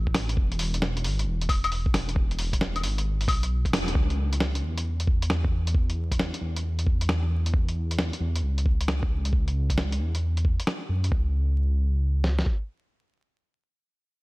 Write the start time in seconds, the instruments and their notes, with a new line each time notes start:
Already playing: detuned saw bass A1
0.07 kick
0.14 snare, open hi-hat
0.29 closed hi-hat
0.37 detuned saw bass E1, kick
0.52 closed hi-hat
0.59 open hi-hat
0.74 closed hi-hat
0.82 snare
0.97 closed hi-hat
1.04 detuned saw bass G#1, open hi-hat
1.19 closed hi-hat
1.27 detuned saw bass E1
1.41 closed hi-hat
1.49 kick, open hi-hat, claves
1.64 closed hi-hat, claves
1.72 open hi-hat
1.86 kick
1.94 detuned saw bass E1, snare, open hi-hat
2.09 closed hi-hat
2.16 kick
2.31 closed hi-hat
2.39 open hi-hat
2.53 kick, closed hi-hat
2.61 snare
2.76 closed hi-hat, claves
2.83 detuned saw bass G#1, open hi-hat
2.98 closed hi-hat
3.21 open hi-hat
3.28 detuned saw bass B1, kick, open hi-hat, claves
3.43 closed hi-hat
3.65 kick, closed hi-hat
3.72 detuned saw bass E1, snare, open hi-hat
3.88 closed hi-hat
3.95 detuned saw bass C#2, kick
4.10 closed hi-hat
4.33 closed hi-hat
4.40 snare
4.55 closed hi-hat
4.62 detuned saw bass E2
4.78 closed hi-hat
5.00 closed hi-hat
5.07 kick
5.22 closed hi-hat
5.30 snare
5.44 kick
5.67 closed hi-hat
5.75 kick
5.90 closed hi-hat
6.12 kick, closed hi-hat
6.20 snare
6.34 closed hi-hat
6.42 detuned saw bass E2
6.56 closed hi-hat
6.79 closed hi-hat
6.87 kick
7.01 closed hi-hat
7.09 snare
7.46 closed hi-hat
7.54 kick
7.69 closed hi-hat
7.91 closed hi-hat
7.99 snare
8.13 closed hi-hat
8.21 detuned saw bass E2
8.36 closed hi-hat
8.43 detuned saw bass C#2
8.58 closed hi-hat
8.66 kick
8.81 closed hi-hat
8.88 snare
9.03 kick
9.10 detuned saw bass C#2
9.25 closed hi-hat
9.33 kick
9.48 closed hi-hat
9.70 kick, closed hi-hat
9.78 snare
9.92 closed hi-hat
10.00 detuned saw bass E2
10.15 closed hi-hat
10.37 closed hi-hat
10.45 kick
10.60 closed hi-hat
10.67 snare
10.89 detuned saw bass F#2
11.04 closed hi-hat
11.12 detuned saw bass C#2, kick
12.24 snare
12.39 snare
12.46 kick